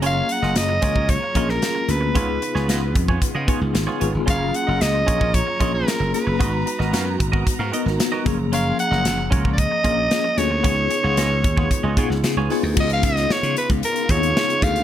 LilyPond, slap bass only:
\new Staff \with { instrumentName = "Slap bass" } { \clef bass \time 4/4 \key fis \major \tempo 4 = 113 fis,,8 r16 fis,,16 fis,,8 cis,8. r16 ais,,8 r8 d,8 | cis,8 r16 cis,16 cis,8 eis,8 r16 cis16 r16 cis,16 gis,,16 r16 gis,,16 g,,16 | fis,,8 r16 fis,,16 cis,8 ais,,8. r16 ais,,8 r16 fis,,16 r16 fis,,16 | gis,,8 r16 gis,,16 fis,8 gis,,8 r16 gis,16 r16 gis,,16 r8 fis,,8~ |
fis,,8 r16 fis,,16 fis,,8 cis,8. r16 ais,,8 r8 d,8 | cis,8 r16 cis,16 cis,8 dis,8 r16 cis,16 b,16 cis,16 cis16 cis,16 r16 d,16 | cis,8 cis,8 r16 cis16 r16 cis,16 r8 dis,8 r8 d,8 | }